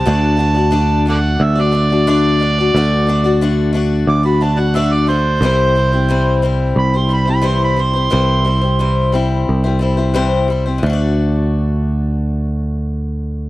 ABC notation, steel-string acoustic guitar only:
X:1
M:4/4
L:1/16
Q:1/4=89
K:Dmix
V:1 name="Steel-string acoustic guitar"
[D,A,DFd]2 [A,DFd] [DFd] [D,A,DFd]2 [A,DFd]3 [DFd] [A,DFd] [DFd] [D,A,DFd]2 [A,DFd] [DFd] | [D,A,DFd]2 [A,DFd] [DFd] [D,A,DFd]2 [A,DFd]3 [DFd] [A,DFd] [DFd] [D,A,DFd]2 [A,DFd]2 | [C,E,G,CEc]2 [G,CEc] [G,CEc] [C,E,G,CEc]2 [G,CEc]3 [G,CEc] [G,CEc] [G,CEc] [C,E,G,CEc]2 [G,CEc] [G,CEc] | [C,E,G,CEc]2 [G,CEc] [G,CEc] [C,E,G,CEc]2 [G,CEc]3 [G,CEc] [G,CEc] [G,CEc] [C,E,G,CEc]2 [G,CEc] [G,CEc] |
[D,A,DFd]16 |]